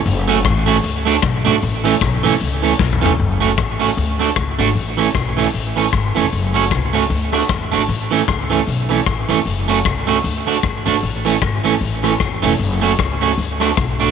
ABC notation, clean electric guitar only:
X:1
M:4/4
L:1/8
Q:"Swing" 1/4=153
K:A
V:1 name="Clean electric guitar"
z [A,CF] z [A,CF] z [A,DF] z [A,DF] | z [E,A,C] z [E,A,C] z [E,A,C] z [E,A,C] | z [A,CF] z [A,CF] z [A,DF] z [A,DF] | z [E,A,C] z [E,A,C] z [E,A,C] z [E,A,C] |
z [A,CF] z [A,CF] z [A,DF] z [A,DF] | z [E,A,C] z [E,A,C] z [E,A,C] z [E,A,C] | z [A,CF] z [A,CF] z [A,DF] z [A,DF] | z [E,A,C] z [E,A,C] z [E,A,C] z [E,A,C] |
z [A,CF] z [A,CF] z [A,DF] z [A,DF] |]